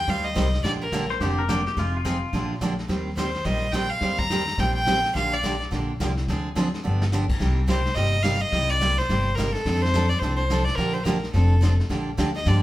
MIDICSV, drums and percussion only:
0, 0, Header, 1, 2, 480
1, 0, Start_track
1, 0, Key_signature, -2, "major"
1, 0, Tempo, 281294
1, 1102, Time_signature, 4, 2, 24, 8
1, 21545, End_track
2, 0, Start_track
2, 0, Title_t, "Drums"
2, 132, Note_on_c, 9, 36, 26
2, 134, Note_on_c, 9, 25, 46
2, 134, Note_on_c, 9, 38, 42
2, 303, Note_off_c, 9, 36, 0
2, 305, Note_off_c, 9, 38, 0
2, 615, Note_on_c, 9, 36, 20
2, 620, Note_on_c, 9, 38, 63
2, 620, Note_on_c, 9, 44, 56
2, 785, Note_off_c, 9, 36, 0
2, 791, Note_off_c, 9, 38, 0
2, 791, Note_off_c, 9, 44, 0
2, 919, Note_on_c, 9, 38, 38
2, 1090, Note_off_c, 9, 38, 0
2, 1094, Note_on_c, 9, 36, 25
2, 1096, Note_off_c, 9, 25, 0
2, 1096, Note_on_c, 9, 25, 59
2, 1096, Note_on_c, 9, 38, 50
2, 1264, Note_off_c, 9, 36, 0
2, 1267, Note_off_c, 9, 38, 0
2, 1570, Note_on_c, 9, 38, 67
2, 1570, Note_on_c, 9, 44, 44
2, 1572, Note_on_c, 9, 36, 23
2, 1741, Note_off_c, 9, 38, 0
2, 1741, Note_off_c, 9, 44, 0
2, 1742, Note_off_c, 9, 36, 0
2, 1869, Note_on_c, 9, 38, 36
2, 2039, Note_off_c, 9, 38, 0
2, 2050, Note_off_c, 9, 25, 0
2, 2050, Note_on_c, 9, 25, 48
2, 2050, Note_on_c, 9, 38, 42
2, 2053, Note_on_c, 9, 36, 20
2, 2221, Note_off_c, 9, 38, 0
2, 2223, Note_off_c, 9, 36, 0
2, 2535, Note_on_c, 9, 36, 17
2, 2535, Note_on_c, 9, 38, 59
2, 2535, Note_on_c, 9, 44, 56
2, 2705, Note_off_c, 9, 38, 0
2, 2705, Note_off_c, 9, 44, 0
2, 2706, Note_off_c, 9, 36, 0
2, 2836, Note_on_c, 9, 38, 38
2, 3007, Note_off_c, 9, 38, 0
2, 3018, Note_on_c, 9, 36, 30
2, 3020, Note_off_c, 9, 25, 0
2, 3020, Note_on_c, 9, 25, 60
2, 3020, Note_on_c, 9, 38, 45
2, 3189, Note_off_c, 9, 36, 0
2, 3190, Note_off_c, 9, 38, 0
2, 3500, Note_on_c, 9, 36, 20
2, 3502, Note_on_c, 9, 38, 65
2, 3502, Note_on_c, 9, 44, 50
2, 3671, Note_off_c, 9, 36, 0
2, 3673, Note_off_c, 9, 38, 0
2, 3673, Note_off_c, 9, 44, 0
2, 3978, Note_on_c, 9, 36, 26
2, 3982, Note_off_c, 9, 25, 0
2, 3982, Note_on_c, 9, 25, 55
2, 3982, Note_on_c, 9, 38, 41
2, 4149, Note_off_c, 9, 36, 0
2, 4152, Note_off_c, 9, 38, 0
2, 4453, Note_on_c, 9, 38, 55
2, 4453, Note_on_c, 9, 44, 60
2, 4456, Note_on_c, 9, 36, 23
2, 4623, Note_off_c, 9, 38, 0
2, 4623, Note_off_c, 9, 44, 0
2, 4627, Note_off_c, 9, 36, 0
2, 4757, Note_on_c, 9, 38, 42
2, 4928, Note_off_c, 9, 38, 0
2, 4934, Note_off_c, 9, 25, 0
2, 4934, Note_on_c, 9, 25, 57
2, 4934, Note_on_c, 9, 38, 47
2, 4936, Note_on_c, 9, 36, 22
2, 5104, Note_off_c, 9, 38, 0
2, 5107, Note_off_c, 9, 36, 0
2, 5413, Note_on_c, 9, 36, 17
2, 5418, Note_on_c, 9, 38, 57
2, 5418, Note_on_c, 9, 44, 58
2, 5584, Note_off_c, 9, 36, 0
2, 5588, Note_off_c, 9, 38, 0
2, 5588, Note_off_c, 9, 44, 0
2, 5708, Note_on_c, 9, 38, 36
2, 5878, Note_off_c, 9, 38, 0
2, 5888, Note_on_c, 9, 36, 21
2, 5893, Note_off_c, 9, 25, 0
2, 5893, Note_on_c, 9, 25, 42
2, 5893, Note_on_c, 9, 38, 43
2, 6059, Note_off_c, 9, 36, 0
2, 6064, Note_off_c, 9, 38, 0
2, 6357, Note_on_c, 9, 38, 64
2, 6357, Note_on_c, 9, 44, 44
2, 6366, Note_on_c, 9, 36, 21
2, 6528, Note_off_c, 9, 38, 0
2, 6528, Note_off_c, 9, 44, 0
2, 6537, Note_off_c, 9, 36, 0
2, 6838, Note_off_c, 9, 25, 0
2, 6838, Note_on_c, 9, 25, 51
2, 6838, Note_on_c, 9, 38, 45
2, 6844, Note_on_c, 9, 36, 22
2, 7009, Note_off_c, 9, 38, 0
2, 7015, Note_off_c, 9, 36, 0
2, 7145, Note_on_c, 9, 36, 44
2, 7316, Note_off_c, 9, 36, 0
2, 7334, Note_on_c, 9, 36, 18
2, 7339, Note_on_c, 9, 38, 65
2, 7339, Note_on_c, 9, 44, 54
2, 7505, Note_off_c, 9, 36, 0
2, 7510, Note_off_c, 9, 38, 0
2, 7510, Note_off_c, 9, 44, 0
2, 7634, Note_on_c, 9, 38, 35
2, 7805, Note_off_c, 9, 38, 0
2, 7814, Note_off_c, 9, 25, 0
2, 7814, Note_on_c, 9, 25, 49
2, 7814, Note_on_c, 9, 38, 43
2, 7815, Note_on_c, 9, 36, 26
2, 7985, Note_off_c, 9, 38, 0
2, 7986, Note_off_c, 9, 36, 0
2, 8300, Note_on_c, 9, 36, 17
2, 8304, Note_on_c, 9, 38, 62
2, 8304, Note_on_c, 9, 44, 51
2, 8471, Note_off_c, 9, 36, 0
2, 8474, Note_off_c, 9, 38, 0
2, 8474, Note_off_c, 9, 44, 0
2, 8608, Note_on_c, 9, 38, 40
2, 8778, Note_off_c, 9, 38, 0
2, 8787, Note_on_c, 9, 36, 23
2, 8789, Note_off_c, 9, 25, 0
2, 8789, Note_on_c, 9, 25, 53
2, 8789, Note_on_c, 9, 38, 48
2, 8958, Note_off_c, 9, 36, 0
2, 8960, Note_off_c, 9, 38, 0
2, 9274, Note_on_c, 9, 36, 20
2, 9281, Note_on_c, 9, 38, 63
2, 9281, Note_on_c, 9, 44, 63
2, 9444, Note_off_c, 9, 36, 0
2, 9452, Note_off_c, 9, 38, 0
2, 9452, Note_off_c, 9, 44, 0
2, 9579, Note_on_c, 9, 38, 34
2, 9750, Note_off_c, 9, 38, 0
2, 9755, Note_on_c, 9, 36, 24
2, 9761, Note_off_c, 9, 25, 0
2, 9761, Note_on_c, 9, 25, 51
2, 9761, Note_on_c, 9, 38, 42
2, 9926, Note_off_c, 9, 36, 0
2, 9932, Note_off_c, 9, 38, 0
2, 10239, Note_on_c, 9, 36, 18
2, 10242, Note_on_c, 9, 38, 61
2, 10242, Note_on_c, 9, 44, 55
2, 10410, Note_off_c, 9, 36, 0
2, 10412, Note_off_c, 9, 38, 0
2, 10412, Note_off_c, 9, 44, 0
2, 10533, Note_on_c, 9, 38, 39
2, 10704, Note_off_c, 9, 38, 0
2, 10719, Note_on_c, 9, 36, 22
2, 10720, Note_off_c, 9, 25, 0
2, 10720, Note_on_c, 9, 25, 52
2, 10720, Note_on_c, 9, 38, 49
2, 10890, Note_off_c, 9, 36, 0
2, 10891, Note_off_c, 9, 38, 0
2, 11199, Note_on_c, 9, 36, 24
2, 11200, Note_on_c, 9, 38, 71
2, 11200, Note_on_c, 9, 44, 49
2, 11370, Note_off_c, 9, 36, 0
2, 11370, Note_off_c, 9, 38, 0
2, 11370, Note_off_c, 9, 44, 0
2, 11498, Note_on_c, 9, 38, 35
2, 11668, Note_off_c, 9, 38, 0
2, 11972, Note_on_c, 9, 38, 67
2, 12143, Note_off_c, 9, 38, 0
2, 12150, Note_on_c, 9, 38, 47
2, 12150, Note_on_c, 9, 44, 55
2, 12321, Note_off_c, 9, 38, 0
2, 12321, Note_off_c, 9, 44, 0
2, 12444, Note_on_c, 9, 49, 68
2, 12447, Note_on_c, 9, 36, 72
2, 12615, Note_off_c, 9, 49, 0
2, 12618, Note_off_c, 9, 36, 0
2, 12630, Note_on_c, 9, 36, 22
2, 12631, Note_off_c, 9, 25, 0
2, 12631, Note_on_c, 9, 25, 59
2, 12631, Note_on_c, 9, 38, 50
2, 12801, Note_off_c, 9, 36, 0
2, 12802, Note_off_c, 9, 38, 0
2, 13110, Note_on_c, 9, 36, 22
2, 13117, Note_on_c, 9, 38, 66
2, 13117, Note_on_c, 9, 44, 52
2, 13281, Note_off_c, 9, 36, 0
2, 13288, Note_off_c, 9, 38, 0
2, 13288, Note_off_c, 9, 44, 0
2, 13403, Note_on_c, 9, 38, 38
2, 13574, Note_off_c, 9, 38, 0
2, 13583, Note_off_c, 9, 25, 0
2, 13583, Note_on_c, 9, 25, 50
2, 13583, Note_on_c, 9, 36, 24
2, 13583, Note_on_c, 9, 38, 41
2, 13753, Note_off_c, 9, 38, 0
2, 13754, Note_off_c, 9, 36, 0
2, 14055, Note_on_c, 9, 38, 57
2, 14055, Note_on_c, 9, 44, 49
2, 14062, Note_on_c, 9, 36, 19
2, 14226, Note_off_c, 9, 38, 0
2, 14226, Note_off_c, 9, 44, 0
2, 14232, Note_off_c, 9, 36, 0
2, 14540, Note_off_c, 9, 25, 0
2, 14540, Note_on_c, 9, 25, 52
2, 14540, Note_on_c, 9, 38, 49
2, 14545, Note_on_c, 9, 36, 29
2, 14710, Note_off_c, 9, 38, 0
2, 14716, Note_off_c, 9, 36, 0
2, 15030, Note_on_c, 9, 36, 21
2, 15032, Note_on_c, 9, 38, 61
2, 15032, Note_on_c, 9, 44, 58
2, 15201, Note_off_c, 9, 36, 0
2, 15203, Note_off_c, 9, 38, 0
2, 15203, Note_off_c, 9, 44, 0
2, 15338, Note_on_c, 9, 38, 33
2, 15509, Note_off_c, 9, 38, 0
2, 15514, Note_on_c, 9, 36, 20
2, 15518, Note_off_c, 9, 25, 0
2, 15518, Note_on_c, 9, 25, 43
2, 15518, Note_on_c, 9, 38, 45
2, 15685, Note_off_c, 9, 36, 0
2, 15689, Note_off_c, 9, 38, 0
2, 15996, Note_on_c, 9, 36, 20
2, 16006, Note_on_c, 9, 38, 61
2, 16006, Note_on_c, 9, 44, 53
2, 16167, Note_off_c, 9, 36, 0
2, 16177, Note_off_c, 9, 38, 0
2, 16177, Note_off_c, 9, 44, 0
2, 16287, Note_on_c, 9, 38, 41
2, 16458, Note_off_c, 9, 38, 0
2, 16472, Note_off_c, 9, 25, 0
2, 16472, Note_on_c, 9, 25, 59
2, 16472, Note_on_c, 9, 38, 47
2, 16474, Note_on_c, 9, 36, 30
2, 16639, Note_off_c, 9, 38, 0
2, 16639, Note_on_c, 9, 38, 29
2, 16645, Note_off_c, 9, 36, 0
2, 16803, Note_off_c, 9, 38, 0
2, 16803, Note_on_c, 9, 38, 43
2, 16953, Note_off_c, 9, 38, 0
2, 16953, Note_on_c, 9, 38, 65
2, 16953, Note_on_c, 9, 44, 47
2, 16954, Note_on_c, 9, 36, 21
2, 17124, Note_off_c, 9, 36, 0
2, 17124, Note_off_c, 9, 38, 0
2, 17124, Note_off_c, 9, 44, 0
2, 17249, Note_on_c, 9, 38, 39
2, 17420, Note_off_c, 9, 38, 0
2, 17431, Note_off_c, 9, 25, 0
2, 17431, Note_on_c, 9, 25, 53
2, 17431, Note_on_c, 9, 38, 42
2, 17434, Note_on_c, 9, 36, 26
2, 17602, Note_off_c, 9, 38, 0
2, 17604, Note_off_c, 9, 36, 0
2, 17914, Note_on_c, 9, 36, 17
2, 17918, Note_on_c, 9, 38, 62
2, 17918, Note_on_c, 9, 44, 55
2, 18084, Note_off_c, 9, 36, 0
2, 18089, Note_off_c, 9, 38, 0
2, 18089, Note_off_c, 9, 44, 0
2, 18216, Note_on_c, 9, 38, 36
2, 18386, Note_off_c, 9, 38, 0
2, 18389, Note_on_c, 9, 36, 27
2, 18394, Note_off_c, 9, 25, 0
2, 18394, Note_on_c, 9, 25, 53
2, 18394, Note_on_c, 9, 38, 44
2, 18559, Note_off_c, 9, 36, 0
2, 18565, Note_off_c, 9, 38, 0
2, 18866, Note_on_c, 9, 36, 26
2, 18869, Note_on_c, 9, 38, 60
2, 18869, Note_on_c, 9, 44, 53
2, 19037, Note_off_c, 9, 36, 0
2, 19040, Note_off_c, 9, 38, 0
2, 19040, Note_off_c, 9, 44, 0
2, 19168, Note_on_c, 9, 38, 32
2, 19339, Note_off_c, 9, 38, 0
2, 19349, Note_on_c, 9, 36, 21
2, 19360, Note_off_c, 9, 25, 0
2, 19360, Note_on_c, 9, 25, 49
2, 19360, Note_on_c, 9, 38, 42
2, 19519, Note_off_c, 9, 36, 0
2, 19531, Note_off_c, 9, 38, 0
2, 19828, Note_on_c, 9, 36, 18
2, 19842, Note_on_c, 9, 38, 68
2, 19842, Note_on_c, 9, 44, 48
2, 19998, Note_off_c, 9, 36, 0
2, 20013, Note_off_c, 9, 38, 0
2, 20013, Note_off_c, 9, 44, 0
2, 20132, Note_on_c, 9, 38, 43
2, 20302, Note_on_c, 9, 36, 30
2, 20303, Note_off_c, 9, 38, 0
2, 20310, Note_off_c, 9, 25, 0
2, 20310, Note_on_c, 9, 25, 49
2, 20310, Note_on_c, 9, 38, 50
2, 20473, Note_off_c, 9, 36, 0
2, 20480, Note_off_c, 9, 38, 0
2, 20783, Note_on_c, 9, 36, 24
2, 20789, Note_on_c, 9, 38, 66
2, 20789, Note_on_c, 9, 44, 54
2, 20953, Note_off_c, 9, 36, 0
2, 20960, Note_off_c, 9, 38, 0
2, 20960, Note_off_c, 9, 44, 0
2, 21082, Note_on_c, 9, 38, 38
2, 21253, Note_off_c, 9, 38, 0
2, 21260, Note_on_c, 9, 36, 23
2, 21264, Note_off_c, 9, 25, 0
2, 21264, Note_on_c, 9, 25, 51
2, 21264, Note_on_c, 9, 38, 49
2, 21431, Note_off_c, 9, 36, 0
2, 21435, Note_off_c, 9, 38, 0
2, 21545, Note_off_c, 9, 25, 0
2, 21545, End_track
0, 0, End_of_file